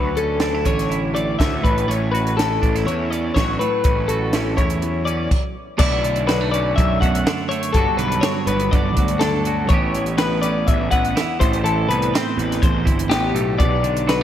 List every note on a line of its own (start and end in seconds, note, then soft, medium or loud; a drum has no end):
0.00 0.65 D2 medium
0.00 1.63 D2 medium
0.00 0.64 D3 medium
0.00 2.40 F#3 medium
0.00 0.17 B4 medium
0.17 0.65 C#4 medium
0.17 0.66 A4 medium
0.17 closed hi-hat medium
0.40 0.55 D4 medium
0.40 snare loud
0.40 closed hi-hat medium
0.55 0.89 E4 medium
0.65 1.35 A1 medium
0.65 1.63 D3 medium
0.65 1.39 C#4 medium
0.65 1.14 C#5 medium
0.65 kick medium
0.65 closed hi-hat medium
0.79 snare soft
0.79 closed hi-hat medium
0.90 2.13 E4 medium
0.90 closed hi-hat medium
1.14 1.62 A2 medium
1.14 1.38 D5 medium
1.14 closed hi-hat medium
1.39 1.62 D2 medium
1.39 1.89 C#4 medium
1.39 1.63 E5 medium
1.39 kick medium
1.39 snare loud
1.39 closed hi-hat medium
1.63 1.86 A1 medium
1.63 2.86 A2 medium
1.63 1.88 B4 medium
1.63 kick medium
1.63 closed hi-hat soft
1.78 closed hi-hat medium
1.88 2.57 A1 medium
1.88 2.38 C#4 soft
1.88 2.11 C#5 medium
1.88 closed hi-hat medium
2.12 2.61 F#4 soft
2.12 2.36 B4 medium
2.12 closed hi-hat medium
2.27 closed hi-hat soft
2.37 3.57 E3 medium
2.37 3.11 C#4 soft
2.37 2.86 A4 medium
2.37 snare loud
2.37 closed hi-hat medium
2.62 2.85 A1 medium
2.62 2.76 D4 medium
2.62 kick medium
2.62 closed hi-hat soft
2.76 3.60 E4 medium
2.76 snare soft
2.76 closed hi-hat medium
2.85 3.30 E2 medium
2.85 3.57 E2 medium
2.85 3.11 C#5 medium
2.85 closed hi-hat medium
3.11 3.57 C#4 medium
3.11 3.34 D5 medium
3.11 closed hi-hat medium
3.35 3.58 A1 loud
3.35 5.55 F#3 medium
3.35 3.59 C#5 medium
3.35 kick medium
3.35 snare loud
3.35 closed hi-hat medium
3.59 4.82 A2 medium
3.59 4.08 B4 medium
3.59 closed hi-hat medium
3.84 4.58 A1 loud
3.84 4.34 C#4 medium
3.84 kick loud
3.84 closed hi-hat medium
4.08 4.57 F#4 medium
4.08 4.57 A4 medium
4.08 closed hi-hat medium
4.33 5.28 E3 medium
4.33 5.05 C#4 medium
4.33 snare loud
4.33 closed hi-hat medium
4.57 5.27 E2 medium
4.57 5.27 E4 medium
4.57 5.05 C#5 medium
4.57 kick medium
4.57 closed hi-hat medium
4.70 closed hi-hat medium
4.82 5.28 E2 medium
4.82 closed hi-hat medium
5.05 5.28 C#4 medium
5.05 5.30 D5 medium
5.05 closed hi-hat medium
5.31 kick loud
5.31 crash medium
5.78 6.73 B1 medium
5.78 6.03 B2 medium
5.78 6.02 D3 medium
5.78 6.26 A3 medium
5.78 7.72 E4 medium
5.78 6.27 D5 medium
5.78 kick loud
5.78 crash loud
6.03 7.25 D3 medium
6.03 closed hi-hat medium
6.16 closed hi-hat medium
6.27 6.41 F#3 medium
6.27 6.51 B4 medium
6.27 snare loud
6.27 closed hi-hat medium
6.41 7.01 A3 medium
6.51 7.73 C#4 medium
6.51 6.75 D5 medium
6.51 closed hi-hat medium
6.76 7.00 B1 medium
6.76 7.72 F#2 medium
6.76 7.00 E5 medium
6.76 kick loud
6.76 closed hi-hat medium
7.01 7.24 B1 medium
7.01 7.49 A3 medium
7.01 7.48 F#5 medium
7.01 kick medium
7.01 closed hi-hat medium
7.15 closed hi-hat medium
7.26 7.75 D3 medium
7.26 snare loud
7.26 closed hi-hat medium
7.49 7.72 A3 medium
7.49 7.74 C#5 medium
7.49 closed hi-hat medium
7.63 closed hi-hat medium
7.73 7.86 G1 medium
7.73 9.67 G2 medium
7.73 7.97 D3 medium
7.73 7.97 A4 medium
7.73 kick loud
7.73 closed hi-hat medium
7.77 8.23 F#3 medium
7.77 8.47 B3 soft
7.77 9.69 F#4 medium
7.97 8.20 B1 medium
7.97 8.71 D3 medium
7.97 8.22 B4 medium
7.97 closed hi-hat medium
8.12 closed hi-hat medium
8.21 8.97 F#3 medium
8.21 8.46 C#5 medium
8.21 snare loud
8.21 closed hi-hat medium
8.47 8.70 G1 medium
8.47 9.72 B3 medium
8.47 8.71 B4 medium
8.47 closed hi-hat medium
8.60 closed hi-hat medium
8.71 8.97 G1 medium
8.71 9.20 D3 medium
8.71 9.20 D5 medium
8.71 kick loud
8.71 closed hi-hat medium
8.97 9.70 D2 loud
8.97 9.46 F#3 medium
8.97 kick medium
8.97 closed hi-hat medium
9.08 closed hi-hat medium
9.19 9.70 D3 medium
9.19 9.69 A4 medium
9.19 snare loud
9.19 closed hi-hat medium
9.45 9.70 F#3 medium
9.45 closed hi-hat medium
9.69 10.63 A1 loud
9.69 10.67 A2 medium
9.69 9.96 E3 medium
9.69 10.20 B3 medium
9.69 10.17 C#5 medium
9.69 kick loud
9.69 closed hi-hat medium
9.73 10.43 C#4 medium
9.73 11.39 G4 medium
9.95 11.15 E3 medium
9.95 closed hi-hat medium
10.06 closed hi-hat medium
10.18 10.92 B3 medium
10.18 10.41 B4 medium
10.18 snare loud
10.18 closed hi-hat medium
10.42 11.38 C#4 medium
10.42 10.67 D5 medium
10.42 closed hi-hat medium
10.67 10.90 A1 medium
10.67 11.38 E2 medium
10.67 10.91 E5 medium
10.67 kick loud
10.67 closed hi-hat medium
10.91 11.14 A1 loud
10.91 11.43 B3 medium
10.91 11.40 F#5 medium
10.91 kick medium
10.91 closed hi-hat medium
11.05 closed hi-hat medium
11.16 11.64 E3 medium
11.16 snare loud
11.16 closed hi-hat medium
11.40 11.85 A1 medium
11.40 12.37 A2 medium
11.40 11.64 C5 medium
11.40 kick medium
11.40 closed hi-hat medium
11.53 closed hi-hat medium
11.64 12.84 E3 medium
11.64 11.88 A4 medium
11.64 closed hi-hat medium
11.89 12.11 C2 medium
11.89 13.09 B3 medium
11.89 12.14 B4 medium
11.89 closed hi-hat medium
12.02 closed hi-hat medium
12.14 13.33 C4 medium
12.14 12.38 C5 medium
12.14 snare loud
12.14 closed hi-hat medium
12.37 12.60 A1 medium
12.37 13.31 E2 medium
12.37 12.62 B4 medium
12.37 closed hi-hat medium
12.52 snare soft
12.52 closed hi-hat medium
12.62 12.86 A1 loud
12.62 13.10 C5 medium
12.62 kick loud
12.62 closed hi-hat medium
12.85 13.08 G1 medium
12.85 13.31 E3 medium
12.85 kick medium
12.85 closed hi-hat medium
12.99 closed hi-hat medium
13.09 13.32 A1 medium
13.09 13.38 B3 medium
13.09 13.59 G4 medium
13.09 snare loud
13.09 closed hi-hat medium
13.35 13.59 B1 medium
13.35 13.58 A2 medium
13.35 closed hi-hat medium
13.58 14.23 B1 medium
13.58 13.83 B2 medium
13.58 14.07 D5 loud
13.58 kick loud
13.58 closed hi-hat medium
13.83 14.23 D3 medium
13.83 closed hi-hat medium
13.97 closed hi-hat medium
14.07 14.21 F#3 medium
14.07 14.23 B4 medium
14.07 snare loud
14.07 closed hi-hat medium